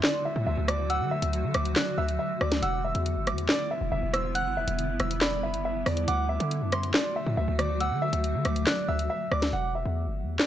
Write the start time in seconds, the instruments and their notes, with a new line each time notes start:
Already playing: ambient pad D3 F#3 A3 F#4
0.03 grand piano D5, snare, clap
0.25 grand piano E5
0.36 808-style bass A2
0.47 808-style bass D2, grand piano E5
0.57 808-style bass D2
0.68 grand piano D5, synth bell D6, cross-stick, closed hi-hat
0.90 grand piano F#5, synth bell E6, closed hi-hat
1.01 808-style bass D3
1.11 grand piano E5
1.22 808-style bass D2, closed hi-hat
1.33 closed hi-hat
1.44 808-style bass D3
1.54 808-style bass D2, synth bell D6, cross-stick, closed hi-hat
1.65 closed hi-hat
1.76 grand piano D5, synth bell F#6, snare, clap, closed hi-hat
1.98 808-style bass D2, grand piano E5, synth bell E6
2.08 closed hi-hat
2.19 grand piano E5
2.41 808-style bass D2, grand piano D5, synth bell D6, cross-stick
2.52 snare, closed hi-hat
2.62 808-style bass E1, ambient pad G3 B3 E4, grand piano F#5, synth bell E6, closed hi-hat
2.85 grand piano E5
2.95 808-style bass E2, closed hi-hat
3.06 closed hi-hat
3.16 808-style bass G1
3.27 synth bell D6, cross-stick, closed hi-hat
3.33 808-style bass E2
3.38 closed hi-hat
3.49 grand piano D5, snare, clap
3.71 grand piano E5
3.81 808-style bass E1
3.92 808-style bass E1, grand piano E5
4.03 808-style bass E1
4.14 grand piano C5, synth bell E6, cross-stick, closed hi-hat
4.35 grand piano F#5, synth bell F#6, closed hi-hat
4.46 808-style bass G1
4.57 808-style bass E1, grand piano E5
4.67 808-style bass E1, closed hi-hat
4.79 closed hi-hat
4.89 808-style bass F#1
5.00 808-style bass E1, synth bell E6, cross-stick, closed hi-hat
5.11 closed hi-hat
5.21 grand piano D5, synth bell B5, snare, clap, closed hi-hat
5.43 808-style bass F#1, grand piano E5
5.54 closed hi-hat
5.65 grand piano E5
5.86 808-style bass E2, grand piano D5, cross-stick, open hi-hat
5.97 closed hi-hat
6.08 808-style bass D2, ambient pad D3 F#3 A3 F#4, grand piano F#5, synth bell D6, closed hi-hat
6.29 grand piano E5
6.40 808-style bass D3, closed hi-hat
6.51 closed hi-hat
6.62 808-style bass F#2
6.72 synth bell C6, cross-stick, closed hi-hat
6.83 closed hi-hat
6.94 grand piano D5, snare, clap
7.16 grand piano E5
7.26 808-style bass A2
7.37 808-style bass D2, grand piano E5
7.48 808-style bass D2
7.59 grand piano D5, synth bell D6, cross-stick, closed hi-hat
7.80 grand piano F#5, synth bell E6, closed hi-hat
7.91 808-style bass D3
8.02 grand piano E5
8.13 808-style bass D2, closed hi-hat
8.24 closed hi-hat
8.34 808-style bass D3
8.45 808-style bass D2, synth bell D6, cross-stick, closed hi-hat
8.56 closed hi-hat
8.66 grand piano D5, synth bell F#6, snare, clap, closed hi-hat
8.88 808-style bass D2, grand piano E5, synth bell E6
8.99 closed hi-hat
9.10 grand piano E5
9.32 808-style bass D2, grand piano D5, synth bell D6, cross-stick
9.42 snare, closed hi-hat
9.53 808-style bass E1, grand piano F#5
9.75 grand piano E5
9.85 808-style bass E2
10.07 808-style bass G1
10.23 808-style bass E2
10.39 grand piano D5, snare, clap